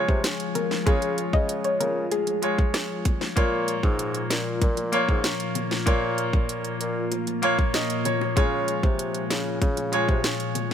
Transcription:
Already playing: F3 G#3 F4 C#5
0.08 C3, kick
0.24 snare, closed hi-hat
0.40 closed hi-hat
0.55 A#4, closed hi-hat, low bongo
0.71 snare, high bongo
0.86 C#3 G#3 F4 G#4 C#5, kick, closed hi-hat, high bongo
1.02 closed hi-hat
1.18 closed hi-hat
1.33 C#3 D#5, kick
1.49 closed hi-hat
1.64 C#5, closed hi-hat
1.80 C#3 A#4, closed hi-hat, low bongo
2.11 G#4, closed hi-hat, high bongo
2.27 closed hi-hat, high bongo
2.42 G#3 F4 C#5, closed hi-hat
2.58 kick
2.74 cross-stick, snare, closed hi-hat
3.05 kick, closed hi-hat, low bongo
3.21 snare, high bongo
3.36 A#2 A#3 F4 C#5, kick, closed hi-hat, high bongo
3.68 closed hi-hat
3.83 G#2, kick
3.99 closed hi-hat
4.14 closed hi-hat
4.30 A#2, snare, closed hi-hat
4.62 A#2, kick, closed hi-hat, high bongo
4.77 closed hi-hat, high bongo
4.92 A#3 F4 C#5, closed hi-hat
5.09 G#2, kick
5.24 snare, closed hi-hat
5.40 closed hi-hat
5.55 closed hi-hat, low bongo
5.71 snare, high bongo
5.86 A#2 A#3 F4 C#5, kick, closed hi-hat, high bongo
6.18 closed hi-hat
6.33 A#2, kick
6.49 closed hi-hat
6.65 closed hi-hat
6.80 A#2, closed hi-hat
7.12 closed hi-hat, high bongo
7.27 closed hi-hat, high bongo
7.42 A#3 F4 C#5 F5, closed hi-hat
7.59 kick
7.74 D#5, snare, closed hi-hat
7.90 closed hi-hat
8.05 C#5, closed hi-hat, low bongo
8.21 high bongo
8.36 C#3 F3 G#3 F4 C#5, kick, closed hi-hat, high bongo
8.68 closed hi-hat
8.83 C3, kick
8.99 closed hi-hat
9.15 closed hi-hat
9.30 C#3, snare, closed hi-hat
9.62 C#3, kick, closed hi-hat, high bongo
9.77 closed hi-hat, high bongo
9.92 G#3 F4 C#5, closed hi-hat
10.09 C3, kick
10.24 snare, closed hi-hat
10.40 closed hi-hat
10.55 closed hi-hat, low bongo

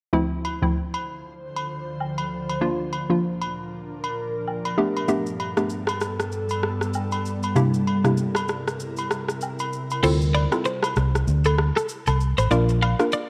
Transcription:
0.13 D2 D3 F3 A3 C4 E4 C5
0.45 high agogo
0.62 D2 F3 A3 C4 E4
0.94 high agogo
1.56 high agogo
2.00 low woodblock
2.18 high agogo
2.49 high agogo
2.61 A#2 F3 A#3 D4 F4 A#4
2.93 high agogo
3.10 F3 A#3 D4 F4
3.41 high agogo
4.04 high agogo
4.47 low woodblock
4.65 high agogo
4.77 G2 G3 A3 B3 D4 G4 A4
4.97 high agogo
5.08 A3 B3 D4 G4, shaker
5.26 shaker
5.40 high agogo
5.57 A3 B3 D4 G4, cross-stick, shaker
5.70 shaker
5.87 cross-stick, high agogo, shaker
6.01 cross-stick, shaker
6.20 cross-stick, shaker
6.32 shaker
6.49 high agogo, shaker
6.63 cross-stick
6.81 cross-stick, shaker
6.93 low woodblock, shaker
7.12 high agogo, shaker
7.25 shaker
7.43 high agogo, shaker
7.56 C3 A#3 D4 E4 G4 A#4, shaker
7.74 shaker
7.87 high agogo
8.04 C3 A#3 D4 E4 G4, cross-stick, shaker
8.17 shaker
8.35 cross-stick, high agogo, shaker
8.48 cross-stick, shaker
8.68 cross-stick, shaker
8.80 shaker
8.97 high agogo, shaker
9.11 cross-stick, shaker
9.29 cross-stick, shaker
9.41 low woodblock, shaker
9.59 high agogo, shaker
9.73 shaker
9.91 high agogo, shaker
10.03 D2 C4 E4 F4 A4 C5, crash, shaker
10.22 shaker
10.35 D5, high agogo
10.52 C4 E4 F4 A4, cross-stick, shaker
10.65 C5, shaker
10.83 cross-stick, high agogo, shaker
10.96 C2, cross-stick, shaker
11.15 cross-stick, shaker
11.27 D2, shaker
11.44 A4, high agogo, shaker
11.58 cross-stick
11.76 A4, cross-stick, shaker
11.88 shaker
12.06 C2 A4, high agogo, shaker
12.20 shaker
12.38 A1 C5, high agogo, shaker
12.51 A#1 A#3 D4 F4 A#4 D5, shaker
12.69 shaker
12.82 F5, high agogo
12.99 A#3 D4 F4 A#4, cross-stick, shaker
13.12 D5, shaker

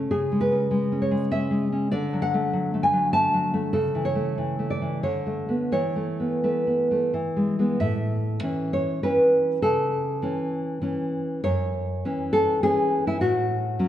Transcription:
0.11 C#3 G#4
0.32 G#3
0.41 B4
0.52 C#4
0.71 G#3
0.92 C#4
1.02 C#5
1.11 G#3
1.31 C#4 E5
1.51 G#3
1.72 C#4
1.92 D3 D5
2.13 F#3
2.22 F#5
2.34 A3
2.53 F#3
2.74 A3
2.83 G#5
2.93 F#3
3.13 A3 A5
3.34 F#3
3.54 A3
3.73 C#3 A4
3.95 E3
4.05 C#5
4.15 A3
4.38 E3
4.59 A3
4.70 D5
4.82 E3
5.03 D3 C#5
5.27 A3
5.49 A3 B3
5.72 E3 C#5
5.96 A3
6.20 B3
6.44 A3 B4
6.67 B3
6.91 A3
7.14 E3
7.36 G#3
7.59 G#3 B3
7.80 A2 E5
8.43 E3 C#4
8.73 C#5
9.03 E3 C#4 B4
9.62 C#3 A4
10.22 E3 C#4
10.82 E3 C#4
11.44 F#2 C#5
12.05 E3 C#4
12.33 A4
12.63 E3 C#4 G#4
13.07 E4
13.21 A2 F#4
13.79 F#3 C#4

